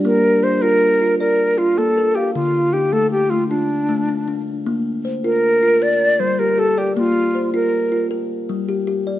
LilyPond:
<<
  \new Staff \with { instrumentName = "Flute" } { \time 12/8 \key bes \major \tempo 4. = 104 bes'4 c''8 bes'4. bes'4 f'8 a'4 g'8 | f'4 g'8 a'8 g'8 f'8 d'2~ d'8 r8 | r4. bes'4. d''4 c''8 bes'8 a'8 g'8 | f'4. bes'4. r2. | }
  \new Staff \with { instrumentName = "Kalimba" } { \time 12/8 \key bes \major <d' d''>8 r1 r4. | r1. | r1. | r1. | }
  \new Staff \with { instrumentName = "Kalimba" } { \time 12/8 \key bes \major << { r4 c''4. r8 d''4. bes4 f''8~ | f''8 r8 ees'4. r8 f'4. d'4. | r4 c''4. r8 bes'4. g'4 d''8~ | d''8 r8 c''4. r8 bes'4. g'4 d''8 | } \\ { bes4 r8 f'4 f'4 r8 f'4 bes'4 | d4 r8 a4 a4 r8 a4 d'4 | bes4 r8 f'4 f'8 r4 g4 g'4 | bes4 r8 f'4 f'8 r4 g4 g'4 | } >> }
>>